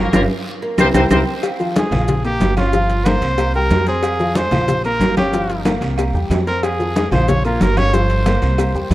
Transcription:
Already playing: upright bass G1, horn section A#3 A#4
0.00 horn section C#4
0.13 upright bass G1, horn section A#3 F4 G4 A#4, upright piano C#4 F4 G4, cowbell, high conga, high timbale, long guiro, claves, maracas
0.62 oud A#3
0.78 upright bass C2, upright piano C4 E4 G4, horn section C4 G4 A#4 C5, cowbell, high conga, high timbale, long guiro, claves, maracas
0.94 upright bass C2, oud C4, horn section C4 G4 A#4 C5, upright piano C4 E4 G4, cowbell, high conga, high timbale, long guiro, claves, maracas
1.10 upright bass C2, oud C4, horn section C4 G4 A#4 C5, upright piano C4 E4 G4, cowbell, high conga, high timbale, long guiro, claves, maracas
1.43 cowbell, high conga, low agogo, long guiro, maracas
1.60 upright piano F3 F4 F5, high conga, maracas
1.76 upright piano G#3 G#4 G#5, trumpet G#4, cowbell, high conga, low timbale, low agogo, short guiro, maracas
1.91 upright bass A#1, upright piano F3 F4 F5, cowbell, low conga, low agogo, short guiro, maracas
2.08 cowbell, high conga, low conga, long guiro, maracas
2.25 upright piano A#3 A#4 A#5, trumpet G4, high conga, low agogo, maracas
2.40 upright bass G1, cowbell, high conga, low timbale, low agogo, short guiro, maracas
2.57 upright piano C#4 C#5 C#6, trumpet F4, cowbell, high conga, low agogo, short guiro, maracas
2.73 upright piano F3 F4 F5, cowbell, high conga, long guiro, maracas
2.90 cowbell, high conga, maracas
3.06 upright piano A#3 A#4 A#5, trumpet C5, cowbell, high conga, low timbale, low agogo, short guiro, maracas
3.21 upright bass C2, cowbell, low agogo, short guiro, maracas
3.38 upright piano A#3 A#4 A#5, cowbell, high conga, low agogo, long guiro, maracas
3.54 upright piano G3 G4 G5, trumpet A#4, high conga, maracas
3.70 upright bass F2, cowbell, high conga, low timbale, low agogo, short guiro, maracas
3.87 upright piano C4 C5 C6, trumpet G#4, cowbell, high conga, short guiro, maracas
4.03 cowbell, high conga, low agogo, long guiro, maracas
4.19 upright piano F3 F4 F5, high conga, maracas
4.35 upright piano G#3 G#4 G#5, trumpet C5, cowbell, high conga, low timbale, low agogo, short guiro, maracas
4.51 upright bass A#1, upright piano F3 F4 F5, cowbell, low conga, low agogo, short guiro, maracas
4.68 cowbell, high conga, low conga, long guiro, maracas
4.84 upright piano A#3 A#4 A#5, trumpet A#4, high conga, low agogo, maracas
5.00 upright bass G1, cowbell, high conga, low timbale, low agogo, short guiro, maracas
5.17 upright piano C#4 C#5 C#6, trumpet G4, cowbell, high conga, low agogo, short guiro, maracas
5.33 upright piano F3 F4 F5, cowbell, high conga, long guiro, maracas
5.50 cowbell, high conga, maracas
5.65 upright piano A#3 A#4 A#5, cowbell, high conga, low timbale, low agogo, short guiro, maracas
5.81 upright bass C2, cowbell, low agogo, short guiro, maracas
5.98 upright piano A#3 A#4 A#5, cowbell, high conga, low agogo, long guiro, maracas
6.13 upright bass E2, upright piano G3 G4 G5, high conga, maracas
6.30 upright bass F2, cowbell, high conga, low timbale, low agogo, short guiro, maracas
6.47 upright piano C4 C5 C6, trumpet A#4, cowbell, high conga, short guiro, maracas
6.63 trumpet G#4, cowbell, high conga, low agogo, long guiro, maracas
6.80 upright piano F3 F4 F5, high conga, maracas
6.96 upright piano G#3 G#4 G#5, cowbell, high conga, low timbale, low agogo, short guiro, maracas
7.11 upright bass A#1, upright piano F3 F4 F5, trumpet C5, cowbell, low conga, low agogo, short guiro, maracas
7.28 trumpet C#5, cowbell, high conga, low conga, long guiro, maracas
7.45 upright piano A#3 A#4 A#5, trumpet F4, high conga, low agogo, maracas
7.60 upright bass G1, trumpet A#4, cowbell, high conga, low timbale, low agogo, short guiro, maracas
7.77 upright piano C#4 C#5 C#6, trumpet C#5, cowbell, high conga, low agogo, short guiro, maracas
7.93 upright piano F3 F4 F5, trumpet C5, cowbell, high conga, long guiro, maracas
8.10 cowbell, high conga, maracas
8.26 upright piano A#3 A#4 A#5, cowbell, high conga, low timbale, low agogo, short guiro, maracas
8.42 upright bass C2, cowbell, low agogo, short guiro, maracas
8.58 upright piano A#3 A#4 A#5, cowbell, high conga, low agogo, long guiro, maracas
8.74 upright bass E2, upright piano G3 G4 G5, high conga, maracas
8.91 upright bass F2, cowbell, high conga, low timbale, low agogo, short guiro

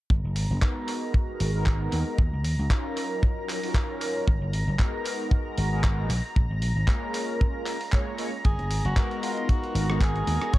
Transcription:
0.10 slap bass G#1, analog synth pad A#5, kick
0.24 slap bass F#1
0.36 slap bass G#1, open hi-hat
0.50 slap bass F#1
0.61 analog polysynth G#3 B3 D#4 F#4 A#4, kick, clap
0.88 open hi-hat
1.14 kick
1.40 slap bass G#1, open hi-hat
1.54 analog polysynth G#3 B3 D#4 F#4 A#4
1.66 kick, clap
1.92 slap bass D#2, open hi-hat
2.18 slap bass D#2, kick
2.33 slap bass C#2
2.44 slap bass D#2, open hi-hat
2.59 slap bass C#2
2.70 analog polysynth F#3 C#4 D#4 F4 A#4, kick, clap
2.97 open hi-hat
3.23 kick
3.49 clap, open hi-hat
3.63 analog polysynth F#3 C#4 D#4 F4 A#4, open hi-hat
3.74 kick, clap
4.01 open hi-hat
4.28 slap bass G#1, kick
4.41 slap bass F#1
4.53 slap bass G#1, open hi-hat
4.67 slap bass F#1
4.79 analog polysynth G#3 B3 D#4 F#4 A#4, kick, clap
5.05 open hi-hat
5.31 kick
5.58 slap bass G#1, open hi-hat
5.72 analog polysynth G#3 B3 D#4 F#4 A#4
5.84 kick, clap
6.10 slap bass A#1, open hi-hat
6.36 slap bass A#1, kick
6.50 slap bass G#1
6.62 slap bass A#1, open hi-hat
6.76 slap bass G#1
6.87 analog polysynth G#3 A#3 C#4 F4 A#4, kick, clap
7.14 open hi-hat
7.41 kick
7.66 clap, open hi-hat
7.81 open hi-hat
7.92 analog polysynth G#3 A#3 C#4 F4 C#5, kick, clap
8.18 analog polysynth G#3 A#3 C#4 F4 C#5, open hi-hat
8.45 slap bass G#1, tenor saxophone G#4, analog synth pad A#5, kick, closed hi-hat
8.59 slap bass F#1, closed hi-hat
8.71 slap bass G#1, open hi-hat
8.85 slap bass F#1, tenor saxophone F#4, closed hi-hat
8.96 analog polysynth G#3 B3 D#4 F#4 A#4, kick, clap, closed hi-hat
9.11 closed hi-hat
9.23 tenor saxophone F4, open hi-hat
9.37 closed hi-hat
9.49 tenor saxophone F#4, kick, closed hi-hat
9.64 closed hi-hat
9.75 slap bass G#1, open hi-hat
9.89 analog polysynth G#3 B3 D#4 F#4 A#4, cross-stick, closed hi-hat
10.01 tenor saxophone G#4, kick, clap, closed hi-hat
10.16 closed hi-hat
10.27 slap bass D#2, open hi-hat
10.42 cross-stick, closed hi-hat
10.53 slap bass D#2, tenor saxophone C#5, kick, closed hi-hat

